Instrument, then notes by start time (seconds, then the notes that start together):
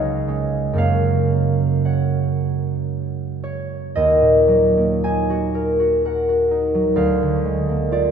harp
Already playing: C#2 G#3 C#5 F5 G#5
0.28 G#3 C#4
0.73 F#2 C#3 A#3 C#4
0.78 C#5 F5
1.85 C#5 F#5
3.44 C#5
3.95 D#2 D#5
4.21 A#2
4.48 F#3
4.77 A#3
5.04 D#4 G#5
5.30 F#4
5.55 A#4
5.80 F#4
6.05 A#4 F#5
6.29 F#4
6.51 D#4
6.75 F#3
6.96 D2 F5
7.22 D3
7.45 G#3
7.69 A#3
7.92 F4 D5